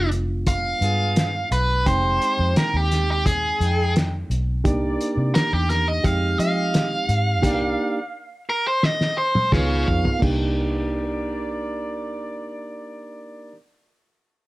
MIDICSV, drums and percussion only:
0, 0, Header, 1, 2, 480
1, 0, Start_track
1, 0, Key_signature, -3, "minor"
1, 0, Tempo, 696864
1, 1280, Time_signature, 4, 2, 24, 8
1, 9967, End_track
2, 0, Start_track
2, 0, Title_t, "Drums"
2, 80, Note_on_c, 9, 42, 58
2, 148, Note_off_c, 9, 42, 0
2, 321, Note_on_c, 9, 42, 94
2, 322, Note_on_c, 9, 36, 104
2, 390, Note_off_c, 9, 42, 0
2, 391, Note_off_c, 9, 36, 0
2, 565, Note_on_c, 9, 42, 64
2, 633, Note_off_c, 9, 42, 0
2, 801, Note_on_c, 9, 42, 95
2, 807, Note_on_c, 9, 38, 105
2, 870, Note_off_c, 9, 42, 0
2, 875, Note_off_c, 9, 38, 0
2, 1045, Note_on_c, 9, 42, 63
2, 1114, Note_off_c, 9, 42, 0
2, 1284, Note_on_c, 9, 36, 107
2, 1284, Note_on_c, 9, 42, 83
2, 1353, Note_off_c, 9, 36, 0
2, 1353, Note_off_c, 9, 42, 0
2, 1526, Note_on_c, 9, 42, 64
2, 1595, Note_off_c, 9, 42, 0
2, 1766, Note_on_c, 9, 42, 81
2, 1771, Note_on_c, 9, 38, 113
2, 1834, Note_off_c, 9, 42, 0
2, 1840, Note_off_c, 9, 38, 0
2, 2008, Note_on_c, 9, 42, 57
2, 2013, Note_on_c, 9, 38, 30
2, 2076, Note_off_c, 9, 42, 0
2, 2082, Note_off_c, 9, 38, 0
2, 2245, Note_on_c, 9, 36, 114
2, 2247, Note_on_c, 9, 42, 89
2, 2314, Note_off_c, 9, 36, 0
2, 2316, Note_off_c, 9, 42, 0
2, 2488, Note_on_c, 9, 42, 54
2, 2557, Note_off_c, 9, 42, 0
2, 2727, Note_on_c, 9, 42, 80
2, 2732, Note_on_c, 9, 38, 114
2, 2796, Note_off_c, 9, 42, 0
2, 2801, Note_off_c, 9, 38, 0
2, 2968, Note_on_c, 9, 42, 58
2, 3037, Note_off_c, 9, 42, 0
2, 3204, Note_on_c, 9, 36, 122
2, 3204, Note_on_c, 9, 42, 82
2, 3273, Note_off_c, 9, 36, 0
2, 3273, Note_off_c, 9, 42, 0
2, 3448, Note_on_c, 9, 42, 68
2, 3517, Note_off_c, 9, 42, 0
2, 3686, Note_on_c, 9, 42, 78
2, 3691, Note_on_c, 9, 38, 110
2, 3755, Note_off_c, 9, 42, 0
2, 3760, Note_off_c, 9, 38, 0
2, 3924, Note_on_c, 9, 42, 55
2, 3930, Note_on_c, 9, 38, 30
2, 3993, Note_off_c, 9, 42, 0
2, 3999, Note_off_c, 9, 38, 0
2, 4163, Note_on_c, 9, 36, 122
2, 4165, Note_on_c, 9, 42, 85
2, 4232, Note_off_c, 9, 36, 0
2, 4234, Note_off_c, 9, 42, 0
2, 4406, Note_on_c, 9, 42, 65
2, 4475, Note_off_c, 9, 42, 0
2, 4644, Note_on_c, 9, 42, 84
2, 4649, Note_on_c, 9, 38, 108
2, 4712, Note_off_c, 9, 42, 0
2, 4718, Note_off_c, 9, 38, 0
2, 4883, Note_on_c, 9, 42, 59
2, 4952, Note_off_c, 9, 42, 0
2, 5120, Note_on_c, 9, 36, 116
2, 5122, Note_on_c, 9, 42, 90
2, 5122, Note_on_c, 9, 49, 79
2, 5189, Note_off_c, 9, 36, 0
2, 5191, Note_off_c, 9, 42, 0
2, 5191, Note_off_c, 9, 49, 0
2, 6083, Note_on_c, 9, 38, 69
2, 6152, Note_off_c, 9, 38, 0
2, 6205, Note_on_c, 9, 38, 56
2, 6274, Note_off_c, 9, 38, 0
2, 6442, Note_on_c, 9, 48, 73
2, 6511, Note_off_c, 9, 48, 0
2, 6559, Note_on_c, 9, 47, 94
2, 6560, Note_on_c, 9, 36, 79
2, 6564, Note_on_c, 9, 38, 92
2, 6628, Note_off_c, 9, 47, 0
2, 6629, Note_off_c, 9, 36, 0
2, 6633, Note_off_c, 9, 38, 0
2, 6804, Note_on_c, 9, 43, 83
2, 6873, Note_off_c, 9, 43, 0
2, 6923, Note_on_c, 9, 43, 76
2, 6992, Note_off_c, 9, 43, 0
2, 7041, Note_on_c, 9, 36, 107
2, 7043, Note_on_c, 9, 49, 79
2, 7110, Note_off_c, 9, 36, 0
2, 7112, Note_off_c, 9, 49, 0
2, 9967, End_track
0, 0, End_of_file